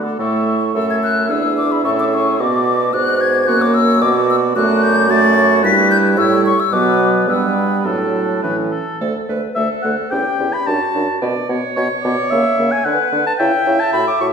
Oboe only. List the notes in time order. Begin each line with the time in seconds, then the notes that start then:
0.04 D5
0.19 E5
0.75 E5
1.31 E5
1.84 E5
2.40 D5
2.93 D5
3.48 C#5
4.01 D5
4.55 D5
5.10 D5
5.36 C#5
5.63 B4
6.18 C#5
6.71 B4
7.28 B4
7.85 A4
8.43 B4
8.71 A4
9.55 E5
9.82 F#5
10.11 G5
10.53 B5
10.67 A5
11.76 C#5
12.03 D5
12.30 E5
12.72 G#5
12.85 F#5
13.27 A5
13.39 G5
13.80 A5
13.93 B5
14.07 D6
14.21 C#6